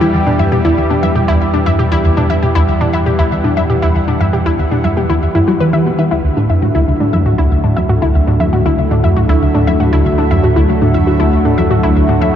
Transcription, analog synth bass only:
0.01 E2
0.14 E2
0.27 B2
0.39 G2
0.52 B2
0.65 E2
0.78 E2
0.90 B2
1.03 G2
1.16 B2
1.28 E2
1.41 E2
1.54 B2
1.67 G2
1.79 B2
1.92 E2
2.05 E2
2.17 B2
2.30 G2
2.43 B2
2.56 E2
2.68 E2
2.81 B2
2.94 G2
3.06 B2
3.19 E2
3.32 E2
3.44 B2
3.57 G2
3.70 B2
3.83 E2
3.95 E2
4.08 B2
4.20 G2
4.33 B2
4.46 E2
4.59 E2
4.71 B2
4.84 G2
4.97 B2
5.09 E2
5.22 E2
5.35 G2
5.48 G3
5.61 E3
5.73 E3
5.86 B2
5.99 E3
6.11 D2
6.24 D2
6.37 A2
6.50 F#2
6.62 A2
6.75 D2
6.88 D2
7.00 A2
7.13 F#2
7.26 A2
7.39 D2
7.51 D2
7.64 A2
7.77 F#2
7.89 A2
8.02 D2
8.15 D2
8.27 A2
8.40 F#2
8.53 A2
8.66 D2
8.78 D2
8.91 A2
9.04 F#2
9.17 A2
9.29 D2
9.42 D2
9.55 A2
9.67 F#2
9.80 A2
9.93 D2
10.05 D2
10.18 A2
10.31 F#2
10.44 A2
10.56 D2
10.69 D2
10.82 A2
10.95 F#2
11.07 A2
11.20 D2
11.33 D2
11.45 A2
11.58 F#2
11.71 A2
11.83 D2
11.96 D2
12.09 A2
12.21 F#2

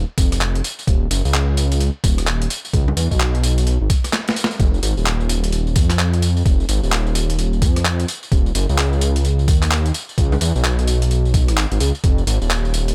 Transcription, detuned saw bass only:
0.18 F1
0.87 D#1
1.11 F#1
1.25 C#2
2.04 D#1
2.73 C#2
2.97 E2
3.11 B1
3.67 B1
3.81 G#1
4.60 F1
4.83 G#1
4.97 D#1
5.76 F2
6.46 F1
6.69 G#1
6.83 D#1
7.62 F2
8.32 D#1
8.55 F#1
8.69 C#2
9.48 D#2
10.18 C#2
10.41 E2
10.55 B1
11.48 G#1
11.72 G#1
11.80 C#2
12.04 F1
12.27 G#1
12.41 D#1

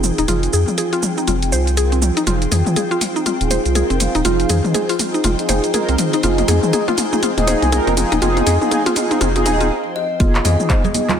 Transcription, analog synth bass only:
Already playing: F1
0.18 D#1
0.28 F1
0.53 F2
1.28 F1
1.52 C2
2.27 F1
2.52 F2
3.41 D#1
3.65 C2
3.90 F1
4.15 D#1
4.25 F1
4.49 F2
5.24 F1
5.49 F1
5.89 C2
6.23 F1
6.48 F2
7.37 D#1
7.62 C2
7.87 F1
8.12 D#1
8.22 F1
8.46 F2
9.21 F1
9.46 D#1
10.20 F1
10.45 F2

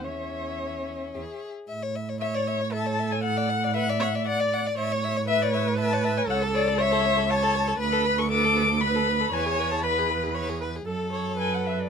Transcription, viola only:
0.05 C#5
2.22 C#5
2.73 A4
3.75 B4
4.00 C#5
4.26 D5
4.78 C#5
5.28 B4
6.28 A4
6.78 C#5
7.29 C#5
7.81 B4
8.31 A4
8.82 B4
9.33 C#5
9.84 B4
10.35 C#5
10.61 B4
10.86 A4
11.13 C#5
11.38 B4

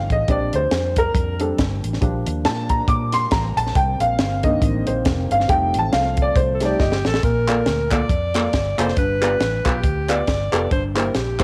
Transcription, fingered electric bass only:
0.10 A1
0.29 A#1
0.53 D2
0.71 F2
1.15 F2
1.58 G1
1.83 A1
2.02 A#1
2.26 D#2
2.45 A#2
2.88 A#2
3.32 A1
3.57 A#1
3.76 C2
4.00 A#1
4.19 G1
4.62 A1
4.88 A#1
5.06 F1
5.31 G1
5.49 F1
5.75 A1
5.93 C2
6.36 C2
6.80 G1
7.05 A1
7.24 A#1
7.67 D2
8.09 F2
8.54 G1
8.79 F1
8.97 G1
9.41 A1
9.66 B1
9.84 D2
10.28 G1
10.53 F1
10.72 G1
11.15 A#1

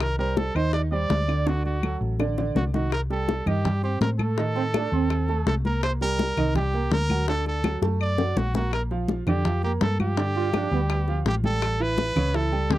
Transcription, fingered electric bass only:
Already playing: C2
0.55 D#2
1.10 D2
2.01 A1
2.55 C2
3.46 G2
4.01 A2
4.92 D#2
5.47 C2
6.37 C2
6.91 D2
7.82 F#2
8.36 A#1
9.26 F2
9.81 G2
10.71 D2
11.26 A1
12.16 C#2
12.70 D2

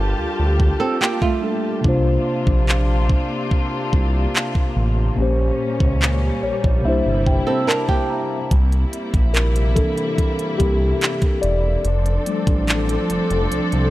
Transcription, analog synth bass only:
Already playing: G1
0.19 D2
0.39 D2
1.84 C2
2.47 A#1
3.93 C2
4.77 A1
5.18 A#1
5.80 C#2
6.43 A#1
6.64 A#1
6.85 C2
7.06 G1
8.51 C2
9.14 A#1
10.60 C2
11.43 E1
11.85 F1
12.47 A1
13.10 F1
13.30 F1
13.52 C2
13.73 C2

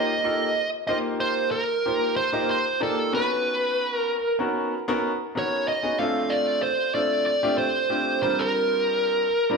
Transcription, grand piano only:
Already playing: A#3 D#4 F4 G4 C5
0.24 A#3 D#4 F4 G4 A4
0.57 G4 C5
0.88 A#3 D#4 F4 G4 C5
1.85 A#3 D#4 F4 G4 C5
2.32 A#3 D#4 F4 G4 D#5
2.66 G4 D#5
2.80 A#3 D#4 F4 G4 D5
3.12 B3 C#4 D#4 F#4 B4
4.39 B3 C#4 D#4 F#4 A#4
4.88 B3 C#4 D#4 F#4 A#4
5.21 F#4 A#4
5.35 B3 C#4 D#4 F#4 A#4
5.83 B3 C#4 D#4 F#4 G#4
5.98 A3 C4 D4 F4 A4
6.94 A3 C4 D4 F4 A4
7.43 A3 C4 D4 F4 G4
7.75 F4 C5
7.89 A3 C4 D4 F4 G4
8.22 G3 C4 D4 F4 A#4
9.50 G3 C4 D4 F4 A#4

